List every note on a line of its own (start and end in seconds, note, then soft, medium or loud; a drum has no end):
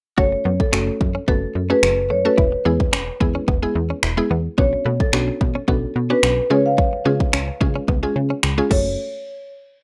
0.17 0.36 F#1 loud
0.17 0.46 A3 medium
0.17 0.46 C#4 medium
0.17 0.46 F#4 medium
0.17 0.26 F#4 medium
0.17 0.46 A4 medium
0.17 0.61 C#5 loud
0.17 kick loud
0.32 muted clean electric guitar stroke soft
0.45 0.63 F#2 loud
0.45 0.54 B3 medium
0.60 1.24 A4 medium
0.60 kick medium
0.72 0.91 F#1 loud
0.72 1.01 A3 medium
0.72 1.01 C#4 medium
0.72 0.81 C#4 medium
0.72 1.01 F#4 medium
0.72 1.01 A4 medium
0.72 finger snap loud
0.87 muted clean electric guitar stroke soft
1.01 1.19 F#2 loud
1.01 kick medium
1.15 1.22 C#4 medium
1.28 1.46 F#1 loud
1.28 1.50 A3 medium
1.28 1.36 B3 medium
1.28 1.50 C#4 medium
1.28 1.50 F#4 medium
1.28 1.71 A4 medium
1.28 1.50 B4 medium
1.28 kick medium
1.55 1.73 F#2 medium
1.55 muted clean electric guitar stroke soft
1.70 1.98 A3 medium
1.70 1.77 C#4 medium
1.70 1.98 C#4 medium
1.70 1.99 F#4 medium
1.70 1.99 G#4 medium
1.70 2.12 B4 medium
1.83 2.12 F#1 medium
1.83 finger snap loud
2.10 2.28 F#2 loud
2.10 2.19 A3 medium
2.10 2.24 C#5 medium
2.25 2.38 A3 medium
2.25 2.38 C#4 medium
2.25 2.38 F#4 medium
2.25 2.38 A4 medium
2.25 3.31 B4 medium
2.38 2.56 E1 loud
2.38 2.46 E4 medium
2.38 kick loud
2.52 muted clean electric guitar stroke soft
2.65 2.94 E2 loud
2.65 2.94 G#3 medium
2.65 2.74 B3 medium
2.65 2.94 B3 medium
2.65 2.94 E4 medium
2.65 2.94 G#4 medium
2.80 kick medium
2.93 3.11 E1 loud
2.93 3.01 C#4 medium
2.93 finger snap loud
3.07 muted clean electric guitar stroke soft
3.20 3.39 E2 loud
3.20 3.42 G#3 medium
3.20 3.42 B3 medium
3.20 3.42 E4 medium
3.20 3.42 G#4 loud
3.20 kick medium
3.35 3.42 C#4 medium
3.48 3.66 E1 loud
3.48 3.56 B3 medium
3.48 kick medium
3.62 3.91 G#3 medium
3.62 3.91 B3 medium
3.62 3.91 E4 medium
3.62 3.91 G#4 loud
3.75 3.93 E2 loud
3.75 muted clean electric guitar stroke soft
3.90 3.98 C#4 medium
4.03 4.21 E1 loud
4.03 finger snap loud
4.17 4.38 G#3 medium
4.17 4.38 B3 medium
4.17 4.39 E4 medium
4.17 4.39 G#4 loud
4.30 4.48 E2 medium
4.30 4.39 B3 medium
4.58 4.76 B1 loud
4.58 4.86 B3 medium
4.58 4.67 B3 medium
4.58 4.87 C#4 medium
4.58 4.87 D4 medium
4.58 4.87 F#4 medium
4.58 5.02 C#5 medium
4.58 kick loud
4.73 muted clean electric guitar stroke soft
4.85 5.03 B2 loud
4.85 4.94 A3 medium
5.00 5.64 A4 medium
5.00 kick medium
5.13 5.31 B1 loud
5.13 5.42 B3 medium
5.13 5.42 C#4 medium
5.13 5.22 C#4 medium
5.13 5.42 D4 medium
5.13 5.42 F#4 loud
5.13 finger snap loud
5.28 muted clean electric guitar stroke soft
5.41 5.59 B2 loud
5.41 kick medium
5.55 5.63 C#4 medium
5.68 5.86 B1 loud
5.68 5.90 B3 medium
5.68 5.77 B3 medium
5.68 5.90 C#4 medium
5.68 5.90 D4 medium
5.68 5.90 F#4 medium
5.68 6.08 A4 medium
5.68 kick medium
5.96 6.14 B2 loud
5.96 muted clean electric guitar stroke soft
6.10 6.39 B3 medium
6.10 6.39 C#4 medium
6.10 6.18 C#4 medium
6.10 6.39 D4 medium
6.10 6.39 F#4 medium
6.10 6.52 B4 loud
6.23 6.41 B1 loud
6.23 finger snap loud
6.50 6.86 C#3 loud
6.50 6.95 G#3 medium
6.50 6.59 G#3 medium
6.50 6.95 C#4 medium
6.50 6.95 F4 medium
6.50 6.95 G#4 medium
6.50 6.65 C#5 medium
6.66 7.72 F5 loud
6.78 6.87 C#4 medium
6.78 kick loud
6.93 muted clean electric guitar stroke soft
7.05 7.24 C#3 medium
7.05 7.34 G#3 medium
7.05 7.14 B3 medium
7.05 7.34 C#4 medium
7.05 7.34 F4 medium
7.05 7.34 G#4 medium
7.20 kick medium
7.33 7.51 C#2 loud
7.33 7.42 C#4 medium
7.33 finger snap loud
7.48 muted clean electric guitar stroke soft
7.60 7.79 C#3 loud
7.60 7.82 G#3 medium
7.60 7.83 C#4 medium
7.60 7.83 F4 medium
7.60 7.83 G#4 loud
7.60 kick loud
7.76 7.83 C#4 medium
7.88 8.06 C#2 loud
7.88 7.97 B3 medium
7.88 kick medium
8.03 8.31 G#3 medium
8.03 8.31 C#4 medium
8.03 8.31 F4 medium
8.03 8.32 G#4 loud
8.16 8.34 C#3 loud
8.16 muted clean electric guitar stroke soft
8.30 8.38 C#4 medium
8.43 8.61 C#2 loud
8.43 finger snap loud
8.58 8.71 G#3 medium
8.58 8.70 C#4 medium
8.58 8.71 F4 medium
8.58 8.71 G#4 loud
8.71 8.96 F#1 loud
8.71 8.87 A3 medium
8.71 8.97 A3 medium
8.71 8.97 C#4 medium
8.71 8.97 F#4 medium
8.71 8.97 A4 medium
8.71 8.97 C#5 medium
8.71 kick loud
8.71 crash medium